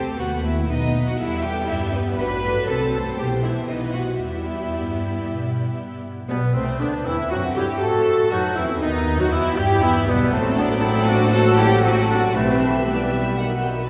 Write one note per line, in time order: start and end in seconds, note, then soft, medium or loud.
0.00 0.18 C2 medium
0.00 0.68 A3 medium
0.00 0.18 C4 medium
0.00 0.18 G4 medium
0.00 0.19 G4 medium
0.00 0.19 C5 medium
0.18 0.69 D#2 medium
0.18 0.67 B3 medium
0.18 0.44 F#4 medium
0.18 0.27 F#4 medium
0.18 0.68 B4 medium
0.18 0.44 F#5 medium
0.44 0.69 E4 medium
0.44 0.54 E5 medium
0.67 1.19 B1 medium
0.67 1.17 B3 medium
0.67 1.05 D#4 medium
0.67 1.07 D#4 medium
0.67 1.19 B4 medium
0.67 1.06 D#5 medium
1.05 1.18 F#4 medium
1.05 1.20 F#4 medium
1.05 1.19 F#5 medium
1.18 1.69 E2 medium
1.18 2.17 G3 medium
1.18 2.17 B3 medium
1.18 1.44 E4 loud
1.18 1.30 E4 medium
1.18 1.69 A4 medium
1.18 1.45 E5 medium
1.41 1.68 G4 medium
1.41 1.69 G4 loud
1.41 1.69 G5 medium
1.67 2.20 G2 medium
1.67 1.93 E4 medium
1.67 1.95 E4 medium
1.67 2.20 G4 medium
1.67 1.94 E5 medium
1.93 2.19 B3 medium
1.93 2.03 B4 medium
2.18 2.69 A1 medium
2.18 2.43 F#3 medium
2.18 2.69 D4 medium
2.18 2.27 F#4 medium
2.18 2.68 B4 loud
2.18 2.69 B4 loud
2.18 2.68 B5 medium
2.44 3.18 F#3 medium
2.44 2.69 A4 medium
2.69 3.19 C2 medium
2.69 2.94 C4 medium
2.69 3.19 A4 medium
2.69 3.20 A4 medium
2.69 3.70 C5 medium
2.69 3.19 A5 medium
2.94 3.19 A3 medium
3.19 3.69 B1 medium
3.19 4.21 E3 medium
3.19 4.19 B3 medium
3.19 3.27 G4 medium
3.19 3.45 G4 medium
3.19 3.44 G5 medium
3.44 3.52 E4 medium
3.44 3.56 E4 medium
3.44 3.70 E5 medium
3.69 4.20 B1 medium
3.69 3.78 D#4 medium
3.69 3.96 D#4 medium
3.69 4.21 B4 medium
3.69 3.95 D#5 medium
3.94 4.02 F#4 medium
3.94 4.22 F#4 medium
3.94 4.21 F#5 medium
4.19 4.72 E2 medium
4.19 6.05 G3 medium
4.19 6.05 B3 medium
4.19 5.99 E4 medium
4.19 6.04 E4 medium
4.19 5.99 G4 medium
4.19 6.00 E5 medium
4.73 5.24 G2 medium
5.25 5.76 B2 medium
5.77 6.28 G2 medium
6.28 6.53 B1 medium
6.28 6.41 B2 medium
6.28 6.40 G3 medium
6.28 6.55 B3 medium
6.28 6.37 B3 medium
6.28 6.38 B3 medium
6.28 7.28 B4 medium
6.28 6.54 B4 medium
6.54 6.81 C2 medium
6.54 6.68 C3 medium
6.54 6.80 A3 medium
6.54 6.66 A3 medium
6.54 6.82 C4 medium
6.54 6.80 C4 medium
6.54 6.81 C4 medium
6.79 7.06 D2 medium
6.79 6.92 D3 medium
6.79 6.91 B3 medium
6.79 6.93 B3 medium
6.79 6.87 D4 medium
6.79 7.05 D4 medium
6.79 6.88 D4 medium
6.79 7.06 D4 medium
6.79 7.07 D4 medium
7.04 7.15 E2 medium
7.04 7.17 E3 medium
7.04 7.30 C4 medium
7.04 7.17 C4 medium
7.04 7.31 E4 medium
7.04 7.14 E4 medium
7.31 7.56 F#2 medium
7.31 7.43 F#3 medium
7.31 7.56 C4 medium
7.31 7.57 C4 medium
7.31 7.39 F#4 medium
7.31 7.43 F#4 medium
7.31 7.57 F#4 loud
7.31 7.57 F#4 medium
7.31 7.81 A4 medium
7.56 7.82 G2 medium
7.56 7.68 G3 medium
7.56 7.82 E4 medium
7.56 7.69 E4 medium
7.56 7.81 G4 medium
7.56 7.82 G4 medium
7.56 7.68 G4 medium
7.81 8.32 A2 medium
7.81 8.34 A3 medium
7.81 8.31 F#4 medium
7.81 8.31 A4 loud
7.81 8.32 A4 medium
7.81 8.32 A4 loud
7.81 8.31 A4 loud
7.81 8.33 A4 medium
7.81 8.31 C5 medium
8.31 8.40 F#2 medium
8.31 8.57 F#3 medium
8.31 8.42 D#4 medium
8.31 8.57 D#4 medium
8.31 8.57 F#4 loud
8.31 8.55 F#4 medium
8.31 8.39 F#4 medium
8.31 8.58 F#4 medium
8.31 8.81 B4 medium
8.56 8.82 E2 medium
8.56 8.84 E3 medium
8.56 8.69 C4 medium
8.56 8.70 C4 medium
8.56 8.81 E4 medium
8.56 8.82 E4 medium
8.56 8.65 E4 medium
8.56 8.82 E4 medium
8.56 8.65 E4 medium
8.81 9.20 D#2 medium
8.81 9.19 D#3 medium
8.81 9.20 B3 medium
8.81 9.19 B3 medium
8.81 9.19 D#4 medium
8.81 9.20 D#4 medium
8.81 9.32 B4 medium
9.18 9.34 F#2 medium
9.18 9.26 F#3 medium
9.18 9.31 D#4 medium
9.18 9.26 D#4 medium
9.18 9.32 F#4 medium
9.18 9.33 F#4 medium
9.18 9.26 F#4 medium
9.18 9.33 F#4 medium
9.31 9.59 E2 medium
9.31 9.59 E3 medium
9.31 9.60 B3 medium
9.31 9.58 B3 medium
9.31 9.58 E4 medium
9.31 9.60 E4 loud
9.31 9.38 E4 medium
9.31 9.58 E4 medium
9.31 9.58 E4 loud
9.31 10.34 G4 medium
9.57 9.83 G2 loud
9.57 9.85 G3 loud
9.57 9.84 E4 medium
9.57 9.70 E4 loud
9.57 9.82 G4 medium
9.57 9.82 G4 loud
9.57 9.83 G4 medium
9.57 9.83 G4 loud
9.57 9.82 G4 loud
9.82 10.09 E2 medium
9.82 10.10 E3 loud
9.82 10.07 B3 loud
9.82 9.95 B3 medium
9.82 10.07 E4 loud
9.82 9.88 E4 medium
9.82 10.11 E4 loud
9.82 10.08 E4 loud
9.82 9.92 E4 medium
10.07 10.34 B1 loud
10.07 10.32 B2 medium
10.07 10.34 G3 medium
10.07 10.33 B3 medium
10.07 10.33 B3 loud
10.07 10.13 B4 medium
10.32 12.32 A1 loud
10.32 11.29 F#3 medium
10.32 10.58 A3 loud
10.32 10.60 A3 loud
10.32 12.31 A3 loud
10.32 10.59 C4 loud
10.32 12.31 A4 medium
10.32 11.30 A4 medium
10.32 10.83 A4 medium
10.32 12.31 C5 medium
10.32 12.31 F#5 medium
10.32 11.11 A5 medium
10.58 10.83 B3 medium
10.58 10.84 B3 medium
10.58 10.83 D4 loud
10.83 11.08 C4 loud
10.83 11.09 E4 loud
10.83 11.33 D5 loud
11.08 11.33 D4 loud
11.08 11.20 D4 medium
11.08 11.34 F#4 loud
11.33 11.83 F#3 medium
11.33 11.57 F#4 loud
11.33 11.59 F#4 loud
11.33 11.58 A4 loud
11.33 11.84 A4 medium
11.33 11.84 C5 medium
11.33 11.83 A5 medium
11.58 11.69 E4 medium
11.58 11.71 E4 loud
11.58 11.84 G4 loud
11.83 12.34 F#3 medium
11.83 11.95 C4 medium
11.83 12.09 C4 medium
11.83 12.09 F#4 loud
11.83 12.38 A4 medium
11.83 12.34 D5 medium
11.83 12.34 A5 medium
12.10 12.21 D4 loud
12.10 12.35 D4 medium
12.10 12.35 F#4 loud
12.34 13.90 B1 medium
12.34 13.34 E3 medium
12.34 12.86 E3 medium
12.34 12.68 A3 loud
12.34 12.85 A3 loud
12.34 12.86 C4 loud
12.34 13.34 G4 medium
12.34 12.87 B4 medium
12.34 13.90 E5 medium
12.34 12.79 E5 medium
12.34 12.85 G5 medium
12.34 12.79 B5 medium
12.86 13.37 E3 medium
12.86 13.85 G3 medium
12.86 13.89 G3 medium
12.86 13.89 B3 medium
12.86 13.38 B4 medium
12.86 13.10 D5 medium
12.86 13.37 G5 medium
13.12 13.38 E5 medium
13.38 13.90 D#3 medium
13.38 13.90 F#4 medium
13.38 13.90 B4 medium
13.38 13.90 F#5 medium
13.38 13.46 F#5 medium
13.64 13.72 G5 medium